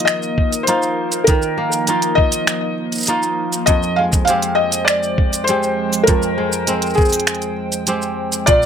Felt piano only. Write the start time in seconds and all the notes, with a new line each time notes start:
0.05 D#5
0.63 C5
1.24 A#4
2.15 D#5
3.66 D#5
3.96 F5
4.25 F5
4.55 D#5
4.85 D5
5.44 C5
6.04 A#4
6.95 G#4
8.46 D5